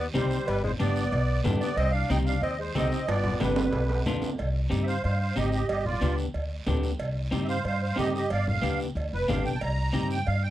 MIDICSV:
0, 0, Header, 1, 6, 480
1, 0, Start_track
1, 0, Key_signature, -3, "minor"
1, 0, Tempo, 326619
1, 698, Time_signature, 4, 2, 24, 8
1, 15432, End_track
2, 0, Start_track
2, 0, Title_t, "Accordion"
2, 0, Program_c, 0, 21
2, 223, Note_on_c, 0, 72, 85
2, 688, Note_on_c, 0, 71, 95
2, 714, Note_off_c, 0, 72, 0
2, 915, Note_off_c, 0, 71, 0
2, 954, Note_on_c, 0, 72, 80
2, 1058, Note_off_c, 0, 72, 0
2, 1166, Note_on_c, 0, 74, 91
2, 2071, Note_off_c, 0, 74, 0
2, 2357, Note_on_c, 0, 74, 88
2, 2588, Note_off_c, 0, 74, 0
2, 2589, Note_on_c, 0, 75, 102
2, 2806, Note_on_c, 0, 77, 93
2, 2823, Note_off_c, 0, 75, 0
2, 3077, Note_off_c, 0, 77, 0
2, 3085, Note_on_c, 0, 79, 98
2, 3194, Note_off_c, 0, 79, 0
2, 3318, Note_on_c, 0, 77, 94
2, 3547, Note_off_c, 0, 77, 0
2, 3551, Note_on_c, 0, 75, 92
2, 3808, Note_off_c, 0, 75, 0
2, 3826, Note_on_c, 0, 72, 80
2, 4041, Note_off_c, 0, 72, 0
2, 4064, Note_on_c, 0, 75, 86
2, 4537, Note_on_c, 0, 74, 101
2, 4550, Note_off_c, 0, 75, 0
2, 4979, Note_off_c, 0, 74, 0
2, 5009, Note_on_c, 0, 71, 74
2, 5909, Note_off_c, 0, 71, 0
2, 7092, Note_on_c, 0, 76, 63
2, 7130, Note_off_c, 0, 76, 0
2, 7152, Note_on_c, 0, 72, 75
2, 7163, Note_on_c, 0, 77, 94
2, 7382, Note_off_c, 0, 72, 0
2, 7384, Note_off_c, 0, 77, 0
2, 7406, Note_on_c, 0, 72, 75
2, 7406, Note_on_c, 0, 77, 89
2, 7614, Note_off_c, 0, 72, 0
2, 7622, Note_off_c, 0, 77, 0
2, 7636, Note_on_c, 0, 72, 65
2, 7644, Note_on_c, 0, 77, 75
2, 7865, Note_off_c, 0, 72, 0
2, 7879, Note_off_c, 0, 77, 0
2, 7882, Note_on_c, 0, 67, 72
2, 7892, Note_on_c, 0, 75, 79
2, 8083, Note_off_c, 0, 67, 0
2, 8102, Note_off_c, 0, 75, 0
2, 8105, Note_on_c, 0, 67, 65
2, 8124, Note_on_c, 0, 75, 76
2, 8327, Note_off_c, 0, 67, 0
2, 8340, Note_off_c, 0, 75, 0
2, 8349, Note_on_c, 0, 67, 86
2, 8362, Note_on_c, 0, 75, 84
2, 8581, Note_off_c, 0, 67, 0
2, 8594, Note_on_c, 0, 65, 87
2, 8598, Note_off_c, 0, 75, 0
2, 8606, Note_on_c, 0, 74, 89
2, 9048, Note_off_c, 0, 65, 0
2, 9073, Note_off_c, 0, 74, 0
2, 10945, Note_on_c, 0, 76, 69
2, 10982, Note_off_c, 0, 76, 0
2, 11007, Note_on_c, 0, 72, 85
2, 11008, Note_on_c, 0, 77, 97
2, 11225, Note_off_c, 0, 72, 0
2, 11235, Note_off_c, 0, 77, 0
2, 11247, Note_on_c, 0, 72, 80
2, 11257, Note_on_c, 0, 77, 86
2, 11473, Note_off_c, 0, 72, 0
2, 11480, Note_off_c, 0, 77, 0
2, 11497, Note_on_c, 0, 72, 74
2, 11502, Note_on_c, 0, 77, 83
2, 11718, Note_off_c, 0, 72, 0
2, 11728, Note_on_c, 0, 67, 62
2, 11730, Note_off_c, 0, 77, 0
2, 11737, Note_on_c, 0, 75, 81
2, 11946, Note_off_c, 0, 75, 0
2, 11948, Note_off_c, 0, 67, 0
2, 11968, Note_on_c, 0, 75, 77
2, 11970, Note_on_c, 0, 67, 67
2, 12195, Note_off_c, 0, 67, 0
2, 12203, Note_off_c, 0, 75, 0
2, 12206, Note_on_c, 0, 74, 79
2, 12222, Note_on_c, 0, 77, 85
2, 12433, Note_off_c, 0, 74, 0
2, 12437, Note_off_c, 0, 77, 0
2, 12459, Note_on_c, 0, 77, 98
2, 12922, Note_off_c, 0, 77, 0
2, 13432, Note_on_c, 0, 71, 94
2, 13649, Note_on_c, 0, 77, 76
2, 13656, Note_off_c, 0, 71, 0
2, 13885, Note_off_c, 0, 77, 0
2, 13893, Note_on_c, 0, 79, 94
2, 14045, Note_on_c, 0, 81, 69
2, 14086, Note_off_c, 0, 81, 0
2, 14108, Note_on_c, 0, 82, 100
2, 14127, Note_off_c, 0, 79, 0
2, 14821, Note_off_c, 0, 82, 0
2, 14862, Note_on_c, 0, 79, 87
2, 15086, Note_on_c, 0, 77, 96
2, 15092, Note_off_c, 0, 79, 0
2, 15324, Note_on_c, 0, 79, 90
2, 15325, Note_off_c, 0, 77, 0
2, 15432, Note_off_c, 0, 79, 0
2, 15432, End_track
3, 0, Start_track
3, 0, Title_t, "Clean electric guitar"
3, 0, Program_c, 1, 27
3, 205, Note_on_c, 1, 60, 79
3, 218, Note_on_c, 1, 63, 69
3, 218, Note_on_c, 1, 67, 85
3, 549, Note_off_c, 1, 60, 0
3, 549, Note_off_c, 1, 63, 0
3, 554, Note_off_c, 1, 67, 0
3, 1168, Note_on_c, 1, 59, 70
3, 1170, Note_on_c, 1, 62, 59
3, 1183, Note_on_c, 1, 67, 72
3, 1508, Note_off_c, 1, 59, 0
3, 1510, Note_off_c, 1, 62, 0
3, 1513, Note_off_c, 1, 67, 0
3, 2120, Note_on_c, 1, 59, 92
3, 2132, Note_on_c, 1, 62, 83
3, 2140, Note_on_c, 1, 67, 84
3, 2462, Note_off_c, 1, 59, 0
3, 2469, Note_off_c, 1, 62, 0
3, 2470, Note_off_c, 1, 67, 0
3, 3085, Note_on_c, 1, 60, 77
3, 3088, Note_on_c, 1, 63, 64
3, 3099, Note_on_c, 1, 67, 69
3, 3424, Note_off_c, 1, 60, 0
3, 3427, Note_off_c, 1, 63, 0
3, 3429, Note_off_c, 1, 67, 0
3, 4044, Note_on_c, 1, 60, 72
3, 4048, Note_on_c, 1, 63, 71
3, 4060, Note_on_c, 1, 67, 74
3, 4382, Note_off_c, 1, 60, 0
3, 4385, Note_off_c, 1, 63, 0
3, 4388, Note_off_c, 1, 67, 0
3, 4996, Note_on_c, 1, 59, 72
3, 5010, Note_on_c, 1, 62, 53
3, 5013, Note_on_c, 1, 67, 86
3, 5340, Note_off_c, 1, 59, 0
3, 5341, Note_off_c, 1, 62, 0
3, 5346, Note_off_c, 1, 67, 0
3, 5975, Note_on_c, 1, 59, 82
3, 5980, Note_on_c, 1, 62, 77
3, 5992, Note_on_c, 1, 65, 91
3, 6308, Note_off_c, 1, 62, 0
3, 6309, Note_off_c, 1, 59, 0
3, 6311, Note_off_c, 1, 65, 0
3, 6905, Note_on_c, 1, 60, 68
3, 6915, Note_on_c, 1, 67, 88
3, 6916, Note_on_c, 1, 63, 66
3, 7254, Note_off_c, 1, 60, 0
3, 7255, Note_off_c, 1, 63, 0
3, 7257, Note_off_c, 1, 67, 0
3, 7875, Note_on_c, 1, 60, 66
3, 7886, Note_on_c, 1, 63, 60
3, 7895, Note_on_c, 1, 67, 69
3, 8218, Note_off_c, 1, 60, 0
3, 8224, Note_off_c, 1, 63, 0
3, 8226, Note_off_c, 1, 67, 0
3, 8835, Note_on_c, 1, 59, 65
3, 8841, Note_on_c, 1, 62, 53
3, 8852, Note_on_c, 1, 67, 60
3, 9178, Note_off_c, 1, 59, 0
3, 9182, Note_off_c, 1, 62, 0
3, 9184, Note_off_c, 1, 67, 0
3, 9797, Note_on_c, 1, 59, 83
3, 9808, Note_on_c, 1, 62, 76
3, 9814, Note_on_c, 1, 67, 96
3, 10142, Note_off_c, 1, 59, 0
3, 10144, Note_off_c, 1, 62, 0
3, 10144, Note_off_c, 1, 67, 0
3, 10746, Note_on_c, 1, 60, 77
3, 10754, Note_on_c, 1, 63, 82
3, 10761, Note_on_c, 1, 67, 91
3, 11095, Note_off_c, 1, 60, 0
3, 11099, Note_off_c, 1, 63, 0
3, 11103, Note_off_c, 1, 67, 0
3, 11697, Note_on_c, 1, 60, 77
3, 11703, Note_on_c, 1, 63, 65
3, 11714, Note_on_c, 1, 67, 71
3, 12051, Note_off_c, 1, 60, 0
3, 12055, Note_off_c, 1, 63, 0
3, 12057, Note_off_c, 1, 67, 0
3, 12666, Note_on_c, 1, 59, 67
3, 12682, Note_on_c, 1, 62, 48
3, 12683, Note_on_c, 1, 67, 73
3, 13018, Note_off_c, 1, 59, 0
3, 13021, Note_off_c, 1, 62, 0
3, 13025, Note_off_c, 1, 67, 0
3, 13642, Note_on_c, 1, 59, 69
3, 13648, Note_on_c, 1, 62, 67
3, 13657, Note_on_c, 1, 67, 68
3, 13985, Note_off_c, 1, 59, 0
3, 13989, Note_off_c, 1, 62, 0
3, 13990, Note_off_c, 1, 67, 0
3, 14592, Note_on_c, 1, 60, 64
3, 14600, Note_on_c, 1, 63, 60
3, 14603, Note_on_c, 1, 67, 78
3, 14942, Note_off_c, 1, 60, 0
3, 14942, Note_off_c, 1, 63, 0
3, 14946, Note_off_c, 1, 67, 0
3, 15432, End_track
4, 0, Start_track
4, 0, Title_t, "Tenor saxophone"
4, 0, Program_c, 2, 66
4, 217, Note_on_c, 2, 55, 80
4, 663, Note_off_c, 2, 55, 0
4, 707, Note_on_c, 2, 55, 92
4, 925, Note_off_c, 2, 55, 0
4, 940, Note_on_c, 2, 56, 77
4, 1047, Note_off_c, 2, 56, 0
4, 1203, Note_on_c, 2, 59, 78
4, 2089, Note_off_c, 2, 59, 0
4, 2390, Note_on_c, 2, 59, 71
4, 2605, Note_off_c, 2, 59, 0
4, 2628, Note_on_c, 2, 60, 92
4, 2844, Note_off_c, 2, 60, 0
4, 2851, Note_on_c, 2, 62, 82
4, 3075, Note_off_c, 2, 62, 0
4, 3098, Note_on_c, 2, 63, 79
4, 3204, Note_off_c, 2, 63, 0
4, 3359, Note_on_c, 2, 62, 75
4, 3558, Note_off_c, 2, 62, 0
4, 3567, Note_on_c, 2, 60, 89
4, 3791, Note_off_c, 2, 60, 0
4, 3799, Note_on_c, 2, 56, 66
4, 4027, Note_off_c, 2, 56, 0
4, 4048, Note_on_c, 2, 60, 77
4, 4494, Note_off_c, 2, 60, 0
4, 4525, Note_on_c, 2, 59, 83
4, 4972, Note_off_c, 2, 59, 0
4, 5003, Note_on_c, 2, 55, 58
4, 5906, Note_off_c, 2, 55, 0
4, 15432, End_track
5, 0, Start_track
5, 0, Title_t, "Upright bass"
5, 0, Program_c, 3, 32
5, 230, Note_on_c, 3, 36, 102
5, 417, Note_off_c, 3, 36, 0
5, 705, Note_on_c, 3, 31, 101
5, 1085, Note_off_c, 3, 31, 0
5, 1177, Note_on_c, 3, 31, 102
5, 1560, Note_off_c, 3, 31, 0
5, 1650, Note_on_c, 3, 35, 118
5, 2035, Note_off_c, 3, 35, 0
5, 2124, Note_on_c, 3, 43, 100
5, 2320, Note_off_c, 3, 43, 0
5, 2596, Note_on_c, 3, 36, 105
5, 2986, Note_off_c, 3, 36, 0
5, 3080, Note_on_c, 3, 36, 105
5, 3468, Note_off_c, 3, 36, 0
5, 3548, Note_on_c, 3, 39, 109
5, 3941, Note_off_c, 3, 39, 0
5, 4041, Note_on_c, 3, 36, 99
5, 4236, Note_off_c, 3, 36, 0
5, 4526, Note_on_c, 3, 31, 107
5, 4911, Note_off_c, 3, 31, 0
5, 5018, Note_on_c, 3, 31, 96
5, 5398, Note_off_c, 3, 31, 0
5, 5481, Note_on_c, 3, 35, 104
5, 5867, Note_off_c, 3, 35, 0
5, 5977, Note_on_c, 3, 41, 77
5, 6189, Note_off_c, 3, 41, 0
5, 6206, Note_on_c, 3, 38, 81
5, 6423, Note_off_c, 3, 38, 0
5, 6460, Note_on_c, 3, 36, 95
5, 6839, Note_off_c, 3, 36, 0
5, 6934, Note_on_c, 3, 43, 80
5, 7316, Note_off_c, 3, 43, 0
5, 7417, Note_on_c, 3, 43, 104
5, 7797, Note_off_c, 3, 43, 0
5, 7883, Note_on_c, 3, 32, 93
5, 8269, Note_off_c, 3, 32, 0
5, 8369, Note_on_c, 3, 31, 96
5, 8753, Note_off_c, 3, 31, 0
5, 8843, Note_on_c, 3, 38, 88
5, 9230, Note_off_c, 3, 38, 0
5, 9325, Note_on_c, 3, 38, 99
5, 9711, Note_off_c, 3, 38, 0
5, 9801, Note_on_c, 3, 38, 93
5, 10189, Note_off_c, 3, 38, 0
5, 10272, Note_on_c, 3, 36, 96
5, 10664, Note_off_c, 3, 36, 0
5, 10765, Note_on_c, 3, 43, 90
5, 11152, Note_off_c, 3, 43, 0
5, 11237, Note_on_c, 3, 43, 100
5, 11627, Note_off_c, 3, 43, 0
5, 11728, Note_on_c, 3, 43, 86
5, 12114, Note_off_c, 3, 43, 0
5, 12212, Note_on_c, 3, 31, 99
5, 12597, Note_off_c, 3, 31, 0
5, 12680, Note_on_c, 3, 38, 85
5, 13070, Note_off_c, 3, 38, 0
5, 13157, Note_on_c, 3, 38, 104
5, 13356, Note_off_c, 3, 38, 0
5, 13416, Note_on_c, 3, 29, 90
5, 13632, Note_off_c, 3, 29, 0
5, 13662, Note_on_c, 3, 31, 80
5, 13875, Note_off_c, 3, 31, 0
5, 13897, Note_on_c, 3, 35, 81
5, 14112, Note_off_c, 3, 35, 0
5, 14140, Note_on_c, 3, 36, 96
5, 14523, Note_off_c, 3, 36, 0
5, 14611, Note_on_c, 3, 43, 90
5, 14998, Note_off_c, 3, 43, 0
5, 15098, Note_on_c, 3, 43, 105
5, 15432, Note_off_c, 3, 43, 0
5, 15432, End_track
6, 0, Start_track
6, 0, Title_t, "Drums"
6, 214, Note_on_c, 9, 73, 71
6, 216, Note_on_c, 9, 63, 85
6, 223, Note_on_c, 9, 56, 74
6, 360, Note_off_c, 9, 73, 0
6, 363, Note_off_c, 9, 63, 0
6, 370, Note_off_c, 9, 56, 0
6, 451, Note_on_c, 9, 73, 78
6, 598, Note_off_c, 9, 73, 0
6, 698, Note_on_c, 9, 74, 68
6, 703, Note_on_c, 9, 56, 118
6, 711, Note_on_c, 9, 63, 36
6, 845, Note_off_c, 9, 74, 0
6, 850, Note_off_c, 9, 56, 0
6, 858, Note_off_c, 9, 63, 0
6, 935, Note_on_c, 9, 64, 77
6, 1082, Note_off_c, 9, 64, 0
6, 1170, Note_on_c, 9, 73, 63
6, 1173, Note_on_c, 9, 56, 72
6, 1186, Note_on_c, 9, 63, 92
6, 1317, Note_off_c, 9, 73, 0
6, 1320, Note_off_c, 9, 56, 0
6, 1333, Note_off_c, 9, 63, 0
6, 1409, Note_on_c, 9, 73, 73
6, 1556, Note_off_c, 9, 73, 0
6, 1652, Note_on_c, 9, 56, 85
6, 1652, Note_on_c, 9, 74, 72
6, 1799, Note_off_c, 9, 56, 0
6, 1799, Note_off_c, 9, 74, 0
6, 2127, Note_on_c, 9, 56, 63
6, 2127, Note_on_c, 9, 66, 77
6, 2128, Note_on_c, 9, 73, 78
6, 2139, Note_on_c, 9, 63, 80
6, 2139, Note_on_c, 9, 64, 88
6, 2274, Note_off_c, 9, 56, 0
6, 2274, Note_off_c, 9, 66, 0
6, 2275, Note_off_c, 9, 73, 0
6, 2286, Note_off_c, 9, 63, 0
6, 2286, Note_off_c, 9, 64, 0
6, 2370, Note_on_c, 9, 73, 76
6, 2517, Note_off_c, 9, 73, 0
6, 2608, Note_on_c, 9, 56, 119
6, 2609, Note_on_c, 9, 74, 67
6, 2755, Note_off_c, 9, 56, 0
6, 2756, Note_off_c, 9, 74, 0
6, 3092, Note_on_c, 9, 63, 90
6, 3093, Note_on_c, 9, 56, 70
6, 3106, Note_on_c, 9, 73, 70
6, 3239, Note_off_c, 9, 63, 0
6, 3240, Note_off_c, 9, 56, 0
6, 3253, Note_off_c, 9, 73, 0
6, 3334, Note_on_c, 9, 73, 77
6, 3481, Note_off_c, 9, 73, 0
6, 3563, Note_on_c, 9, 63, 36
6, 3575, Note_on_c, 9, 56, 84
6, 3583, Note_on_c, 9, 74, 72
6, 3710, Note_off_c, 9, 63, 0
6, 3722, Note_off_c, 9, 56, 0
6, 3730, Note_off_c, 9, 74, 0
6, 4045, Note_on_c, 9, 63, 83
6, 4052, Note_on_c, 9, 56, 64
6, 4052, Note_on_c, 9, 66, 72
6, 4067, Note_on_c, 9, 73, 72
6, 4192, Note_off_c, 9, 63, 0
6, 4199, Note_off_c, 9, 56, 0
6, 4199, Note_off_c, 9, 66, 0
6, 4214, Note_off_c, 9, 73, 0
6, 4293, Note_on_c, 9, 73, 71
6, 4440, Note_off_c, 9, 73, 0
6, 4532, Note_on_c, 9, 74, 72
6, 4534, Note_on_c, 9, 56, 118
6, 4534, Note_on_c, 9, 65, 84
6, 4679, Note_off_c, 9, 74, 0
6, 4681, Note_off_c, 9, 56, 0
6, 4681, Note_off_c, 9, 65, 0
6, 4756, Note_on_c, 9, 65, 75
6, 4771, Note_on_c, 9, 64, 76
6, 4903, Note_off_c, 9, 65, 0
6, 4918, Note_off_c, 9, 64, 0
6, 4998, Note_on_c, 9, 56, 70
6, 4998, Note_on_c, 9, 66, 89
6, 5017, Note_on_c, 9, 63, 91
6, 5021, Note_on_c, 9, 73, 70
6, 5145, Note_off_c, 9, 56, 0
6, 5145, Note_off_c, 9, 66, 0
6, 5164, Note_off_c, 9, 63, 0
6, 5168, Note_off_c, 9, 73, 0
6, 5235, Note_on_c, 9, 66, 94
6, 5254, Note_on_c, 9, 73, 72
6, 5382, Note_off_c, 9, 66, 0
6, 5401, Note_off_c, 9, 73, 0
6, 5475, Note_on_c, 9, 56, 83
6, 5475, Note_on_c, 9, 66, 92
6, 5490, Note_on_c, 9, 74, 75
6, 5493, Note_on_c, 9, 63, 35
6, 5622, Note_off_c, 9, 56, 0
6, 5622, Note_off_c, 9, 66, 0
6, 5637, Note_off_c, 9, 74, 0
6, 5640, Note_off_c, 9, 63, 0
6, 5721, Note_on_c, 9, 66, 82
6, 5868, Note_off_c, 9, 66, 0
6, 5963, Note_on_c, 9, 73, 75
6, 5969, Note_on_c, 9, 56, 67
6, 5969, Note_on_c, 9, 63, 78
6, 5969, Note_on_c, 9, 64, 86
6, 6110, Note_off_c, 9, 73, 0
6, 6116, Note_off_c, 9, 56, 0
6, 6116, Note_off_c, 9, 63, 0
6, 6116, Note_off_c, 9, 64, 0
6, 6199, Note_on_c, 9, 66, 73
6, 6207, Note_on_c, 9, 73, 71
6, 6346, Note_off_c, 9, 66, 0
6, 6354, Note_off_c, 9, 73, 0
6, 6441, Note_on_c, 9, 74, 62
6, 6452, Note_on_c, 9, 56, 100
6, 6454, Note_on_c, 9, 63, 35
6, 6588, Note_off_c, 9, 74, 0
6, 6599, Note_off_c, 9, 56, 0
6, 6601, Note_off_c, 9, 63, 0
6, 6927, Note_on_c, 9, 63, 74
6, 6931, Note_on_c, 9, 56, 70
6, 6936, Note_on_c, 9, 73, 71
6, 7073, Note_off_c, 9, 63, 0
6, 7078, Note_off_c, 9, 56, 0
6, 7083, Note_off_c, 9, 73, 0
6, 7169, Note_on_c, 9, 73, 71
6, 7316, Note_off_c, 9, 73, 0
6, 7403, Note_on_c, 9, 74, 73
6, 7407, Note_on_c, 9, 56, 78
6, 7422, Note_on_c, 9, 63, 34
6, 7550, Note_off_c, 9, 74, 0
6, 7554, Note_off_c, 9, 56, 0
6, 7569, Note_off_c, 9, 63, 0
6, 7885, Note_on_c, 9, 73, 72
6, 7888, Note_on_c, 9, 63, 80
6, 7894, Note_on_c, 9, 56, 60
6, 8032, Note_off_c, 9, 73, 0
6, 8035, Note_off_c, 9, 63, 0
6, 8041, Note_off_c, 9, 56, 0
6, 8116, Note_on_c, 9, 73, 73
6, 8263, Note_off_c, 9, 73, 0
6, 8362, Note_on_c, 9, 74, 69
6, 8365, Note_on_c, 9, 56, 114
6, 8509, Note_off_c, 9, 74, 0
6, 8512, Note_off_c, 9, 56, 0
6, 8609, Note_on_c, 9, 64, 76
6, 8756, Note_off_c, 9, 64, 0
6, 8845, Note_on_c, 9, 56, 72
6, 8845, Note_on_c, 9, 73, 65
6, 8853, Note_on_c, 9, 63, 80
6, 8991, Note_off_c, 9, 56, 0
6, 8992, Note_off_c, 9, 73, 0
6, 9000, Note_off_c, 9, 63, 0
6, 9083, Note_on_c, 9, 73, 69
6, 9230, Note_off_c, 9, 73, 0
6, 9322, Note_on_c, 9, 56, 84
6, 9324, Note_on_c, 9, 74, 68
6, 9325, Note_on_c, 9, 63, 34
6, 9468, Note_off_c, 9, 56, 0
6, 9471, Note_off_c, 9, 74, 0
6, 9472, Note_off_c, 9, 63, 0
6, 9794, Note_on_c, 9, 73, 67
6, 9797, Note_on_c, 9, 56, 59
6, 9797, Note_on_c, 9, 66, 65
6, 9820, Note_on_c, 9, 63, 80
6, 9820, Note_on_c, 9, 64, 76
6, 9941, Note_off_c, 9, 73, 0
6, 9943, Note_off_c, 9, 56, 0
6, 9943, Note_off_c, 9, 66, 0
6, 9967, Note_off_c, 9, 63, 0
6, 9967, Note_off_c, 9, 64, 0
6, 10041, Note_on_c, 9, 73, 65
6, 10188, Note_off_c, 9, 73, 0
6, 10281, Note_on_c, 9, 56, 100
6, 10282, Note_on_c, 9, 74, 65
6, 10283, Note_on_c, 9, 63, 34
6, 10428, Note_off_c, 9, 56, 0
6, 10429, Note_off_c, 9, 74, 0
6, 10430, Note_off_c, 9, 63, 0
6, 10761, Note_on_c, 9, 56, 64
6, 10771, Note_on_c, 9, 63, 82
6, 10771, Note_on_c, 9, 73, 64
6, 10908, Note_off_c, 9, 56, 0
6, 10918, Note_off_c, 9, 63, 0
6, 10918, Note_off_c, 9, 73, 0
6, 11003, Note_on_c, 9, 73, 72
6, 11150, Note_off_c, 9, 73, 0
6, 11240, Note_on_c, 9, 56, 85
6, 11246, Note_on_c, 9, 74, 72
6, 11265, Note_on_c, 9, 63, 35
6, 11387, Note_off_c, 9, 56, 0
6, 11393, Note_off_c, 9, 74, 0
6, 11411, Note_off_c, 9, 63, 0
6, 11740, Note_on_c, 9, 63, 74
6, 11742, Note_on_c, 9, 56, 62
6, 11742, Note_on_c, 9, 66, 69
6, 11742, Note_on_c, 9, 73, 73
6, 11887, Note_off_c, 9, 63, 0
6, 11889, Note_off_c, 9, 56, 0
6, 11889, Note_off_c, 9, 66, 0
6, 11889, Note_off_c, 9, 73, 0
6, 11985, Note_on_c, 9, 73, 72
6, 12132, Note_off_c, 9, 73, 0
6, 12203, Note_on_c, 9, 56, 107
6, 12216, Note_on_c, 9, 74, 70
6, 12222, Note_on_c, 9, 63, 34
6, 12350, Note_off_c, 9, 56, 0
6, 12363, Note_off_c, 9, 74, 0
6, 12369, Note_off_c, 9, 63, 0
6, 12457, Note_on_c, 9, 64, 78
6, 12604, Note_off_c, 9, 64, 0
6, 12682, Note_on_c, 9, 63, 89
6, 12687, Note_on_c, 9, 56, 70
6, 12695, Note_on_c, 9, 73, 68
6, 12829, Note_off_c, 9, 63, 0
6, 12834, Note_off_c, 9, 56, 0
6, 12842, Note_off_c, 9, 73, 0
6, 12928, Note_on_c, 9, 73, 66
6, 13075, Note_off_c, 9, 73, 0
6, 13161, Note_on_c, 9, 63, 32
6, 13167, Note_on_c, 9, 74, 70
6, 13180, Note_on_c, 9, 56, 85
6, 13308, Note_off_c, 9, 63, 0
6, 13314, Note_off_c, 9, 74, 0
6, 13327, Note_off_c, 9, 56, 0
6, 13641, Note_on_c, 9, 73, 68
6, 13656, Note_on_c, 9, 63, 76
6, 13656, Note_on_c, 9, 64, 77
6, 13666, Note_on_c, 9, 56, 67
6, 13666, Note_on_c, 9, 66, 61
6, 13788, Note_off_c, 9, 73, 0
6, 13803, Note_off_c, 9, 63, 0
6, 13803, Note_off_c, 9, 64, 0
6, 13813, Note_off_c, 9, 56, 0
6, 13813, Note_off_c, 9, 66, 0
6, 13892, Note_on_c, 9, 73, 66
6, 14039, Note_off_c, 9, 73, 0
6, 14124, Note_on_c, 9, 74, 63
6, 14127, Note_on_c, 9, 56, 101
6, 14131, Note_on_c, 9, 63, 33
6, 14271, Note_off_c, 9, 74, 0
6, 14274, Note_off_c, 9, 56, 0
6, 14278, Note_off_c, 9, 63, 0
6, 14606, Note_on_c, 9, 56, 65
6, 14606, Note_on_c, 9, 73, 70
6, 14621, Note_on_c, 9, 63, 87
6, 14753, Note_off_c, 9, 56, 0
6, 14753, Note_off_c, 9, 73, 0
6, 14768, Note_off_c, 9, 63, 0
6, 14849, Note_on_c, 9, 73, 76
6, 14996, Note_off_c, 9, 73, 0
6, 15089, Note_on_c, 9, 56, 80
6, 15089, Note_on_c, 9, 74, 70
6, 15095, Note_on_c, 9, 63, 36
6, 15236, Note_off_c, 9, 56, 0
6, 15236, Note_off_c, 9, 74, 0
6, 15242, Note_off_c, 9, 63, 0
6, 15432, End_track
0, 0, End_of_file